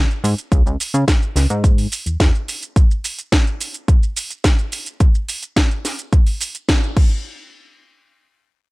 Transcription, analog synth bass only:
0.24 0.35 G#2 loud
0.52 0.63 C#2 loud
0.66 0.77 C#2 loud
0.94 1.05 C#3 medium
1.36 1.47 C#2 medium
1.50 1.87 G#2 loud
2.06 2.17 E2 soft
2.20 2.31 E2 loud

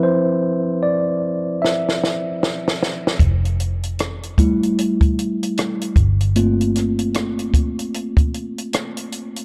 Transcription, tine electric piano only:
0.00 0.79 F3 soft
0.00 0.79 C4 soft
0.00 0.79 E4 medium
0.00 3.21 B4 medium
0.00 0.85 C5 medium
0.00 1.62 E5 medium
0.83 1.58 D5 medium
1.62 2.76 E5 medium
4.38 5.53 G3 soft
4.38 5.53 A3 soft
4.38 5.53 E4 medium
6.36 6.92 A3 soft
6.36 6.92 A#3 soft
6.36 6.92 C4 soft
6.36 6.92 F4 soft

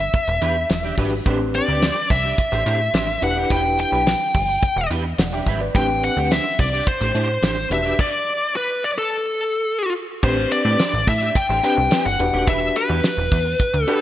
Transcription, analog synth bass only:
0.28 0.39 E1 loud
0.42 0.65 E2 loud
0.70 0.93 E1 medium
0.98 1.21 G#1 medium
1.26 1.61 A1 medium
1.68 1.92 D2 medium
2.10 2.34 C2 medium
2.52 2.64 A1 loud
2.66 2.90 A2 loud
2.94 3.17 A1 medium
3.22 3.46 E1 medium
3.50 3.85 E1 loud
3.92 4.16 B1 medium
4.35 4.58 G1 medium
4.76 4.88 E1 loud
4.91 5.14 E2 loud
5.18 5.42 E1 medium
5.46 5.70 G#1 medium
5.75 6.10 A1 loud
6.17 6.40 D2 medium
6.59 6.82 C2 medium
7.01 7.12 A1 medium
7.15 7.38 A2 medium
7.42 7.66 A1 medium
7.70 7.94 E1 medium
10.23 10.47 A1 loud
10.65 10.77 A2 loud
10.93 11.05 A1 loud
11.07 11.31 A2 loud
11.49 11.61 A1 medium
11.77 11.89 C2 medium
12.05 12.17 G1 medium
12.19 12.31 E1 medium
12.34 12.45 D#1 medium
12.47 12.71 E1 loud
12.89 13.01 E2 loud
13.17 13.29 E1 loud
13.32 13.55 E2 loud
13.74 13.85 D2 medium

